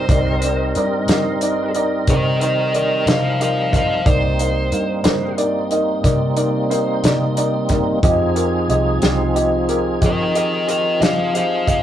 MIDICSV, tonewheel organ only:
0, 0, Header, 1, 2, 480
1, 0, Start_track
1, 0, Key_signature, -3, "minor"
1, 0, Tempo, 661521
1, 67, Time_signature, 12, 3, 24, 8
1, 8582, End_track
2, 0, Start_track
2, 0, Title_t, "Tonewheel organ"
2, 0, Program_c, 0, 16
2, 59, Note_on_c, 0, 55, 59
2, 59, Note_on_c, 0, 63, 54
2, 59, Note_on_c, 0, 70, 52
2, 61, Note_on_c, 0, 60, 61
2, 2913, Note_off_c, 0, 55, 0
2, 2913, Note_off_c, 0, 63, 0
2, 2913, Note_off_c, 0, 70, 0
2, 2915, Note_off_c, 0, 60, 0
2, 2949, Note_on_c, 0, 60, 53
2, 2949, Note_on_c, 0, 63, 59
2, 2952, Note_on_c, 0, 55, 58
2, 2955, Note_on_c, 0, 58, 60
2, 5799, Note_off_c, 0, 60, 0
2, 5799, Note_off_c, 0, 63, 0
2, 5800, Note_off_c, 0, 55, 0
2, 5802, Note_off_c, 0, 58, 0
2, 5826, Note_on_c, 0, 60, 54
2, 5826, Note_on_c, 0, 63, 58
2, 5827, Note_on_c, 0, 68, 56
2, 5834, Note_on_c, 0, 53, 61
2, 8582, Note_off_c, 0, 53, 0
2, 8582, Note_off_c, 0, 60, 0
2, 8582, Note_off_c, 0, 63, 0
2, 8582, Note_off_c, 0, 68, 0
2, 8582, End_track
0, 0, End_of_file